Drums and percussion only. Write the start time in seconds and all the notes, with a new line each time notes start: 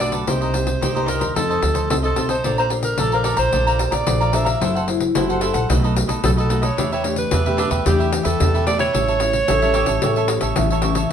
0.00 pandeiro
0.12 pandeiro
0.27 pandeiro
0.42 pandeiro
0.54 pandeiro
0.67 pandeiro
0.82 pandeiro
0.96 pandeiro
1.08 pandeiro
1.21 pandeiro
1.36 pandeiro
1.51 pandeiro
1.62 pandeiro
1.75 pandeiro
1.90 pandeiro
2.04 pandeiro
2.16 pandeiro
2.29 pandeiro
2.44 pandeiro
2.58 pandeiro
2.70 pandeiro
2.83 pandeiro
2.98 pandeiro
3.12 pandeiro
3.24 pandeiro
3.37 pandeiro
3.52 pandeiro
3.67 pandeiro
3.79 pandeiro
3.92 pandeiro
4.07 pandeiro
4.21 pandeiro
4.33 pandeiro
4.46 pandeiro
4.61 pandeiro
4.76 pandeiro
4.88 pandeiro
5.00 pandeiro
5.15 pandeiro
5.30 pandeiro
5.41 pandeiro
5.54 pandeiro
5.70 pandeiro
5.84 pandeiro
5.96 pandeiro
6.09 pandeiro
6.24 pandeiro
6.38 pandeiro
6.50 pandeiro
6.63 pandeiro
6.78 pandeiro
6.93 pandeiro
7.04 pandeiro
7.16 pandeiro
7.31 pandeiro
7.46 pandeiro
7.58 pandeiro
7.71 pandeiro
7.86 pandeiro
8.00 pandeiro
8.12 pandeiro
8.25 pandeiro
8.40 pandeiro
8.55 pandeiro
8.67 pandeiro
8.79 pandeiro
8.94 pandeiro
9.08 pandeiro
9.20 pandeiro
9.33 pandeiro
9.48 pandeiro
9.62 pandeiro
9.74 pandeiro
9.86 pandeiro
10.02 pandeiro
10.16 pandeiro
10.28 pandeiro
10.41 pandeiro
10.56 pandeiro
10.70 pandeiro
10.82 pandeiro
10.95 pandeiro